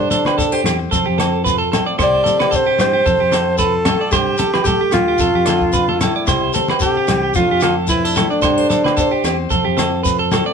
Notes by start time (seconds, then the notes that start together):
Already playing: G3 D4 C5
0.11 A4 C5, closed hi-hat, high conga, low conga, shekere
0.25 B4, cross-stick, high conga, low agogo
0.38 A4, kick, shekere
0.52 G4 C5
0.64 E2 C4 C5, cross-stick, closed hi-hat, low conga, low agogo, shekere
0.79 muted clean electric guitar stroke
0.91 F2 F3 F4 A4, kick, shekere
1.06 F2 G4
1.18 A4, cross-stick, closed hi-hat, high conga, low agogo, shekere
1.44 F4 B4, kick, shekere
1.58 A4
1.72 A3 A4, cross-stick, closed hi-hat, low conga, low agogo, shekere
1.86 D5
1.99 C2 C3 G4 C5, kick, cross-stick, low agogo, shekere
2.03 D5
2.24 A4 C5, closed hi-hat, high conga, low conga, shekere
2.39 B4, cross-stick, high conga, low agogo
2.51 D3 A4, kick, shekere
2.55 C5
2.66 G4
2.79 G2 E3 C5, cross-stick, closed hi-hat, low conga, low agogo, shekere
2.93 G4
3.06 F2 F3 F4 A4, kick, shekere
3.20 F2 G4
3.32 A4, cross-stick, closed hi-hat, high conga, low agogo, shekere
3.58 F4 A4 B4, kick, shekere
3.85 A3 F4 A4, cross-stick, closed hi-hat, high conga, low conga, low agogo, shekere
4.01 D5
4.11 G2 G3 C4 G4 C5, kick, cross-stick, low agogo, shekere
4.38 A4, muted steel-string acoustic guitar stroke, closed hi-hat, high conga, low conga, shekere
4.54 B4, cross-stick, high conga, low agogo
4.63 A3 G4 A4, kick, low conga, shekere
4.81 G4
4.92 D2 G3 F4, cross-stick, closed hi-hat, low conga, low agogo, shekere
5.08 G4
5.19 F2 F3 A3 D4 A4, kick, shekere
5.35 F2 G4
5.46 D4 A4, cross-stick, closed hi-hat, high conga, low agogo, shekere
5.61 kick
5.73 D4 B4, kick, shekere
5.89 A4, high conga
5.98 A3 D4 E4 A4, cross-stick, closed hi-hat, high conga, low conga, shekere
6.03 low agogo
6.16 D5
6.25 C2 C3 G3 C5, kick, cross-stick, low agogo, shekere
6.53 A4 C5, closed hi-hat, high conga, low conga, shekere
6.68 B4, cross-stick, high conga, low agogo
6.80 D3 G4 A4, kick, shekere
6.97 G4
7.08 C2 E3, cross-stick, closed hi-hat, low conga, low agogo, shekere
7.23 G4
7.34 F2 F3 A3 D4 F4, kick, shekere
7.50 F2 G4
7.60 F4 A4, cross-stick, closed hi-hat, high conga, low agogo, shekere
7.64 D4
7.88 C4 E4 B4, kick, shekere
8.05 D4 A4
8.15 A3 D4 A4, cross-stick, closed hi-hat, high conga, low conga, low agogo, shekere
8.30 D4 D5
8.42 G2 G3 A4 C5, kick, cross-stick, low agogo, shekere
8.58 C5
8.70 A4 C5, closed hi-hat, high conga, low conga, shekere
8.84 B4, cross-stick, high conga, low agogo
8.97 A4 C5, kick, shekere
9.11 G4
9.24 E2 C4 C5, cross-stick, closed hi-hat, low agogo, shekere
9.50 F2 F3 F4 A4, kick, shekere
9.65 F2 G4
9.77 A4, cross-stick, closed hi-hat, high conga, low agogo, shekere
10.03 F4 B4, kick, shekere
10.19 A4
10.31 A3 A4, cross-stick, closed hi-hat, high conga, low conga, low agogo, shekere
10.46 D5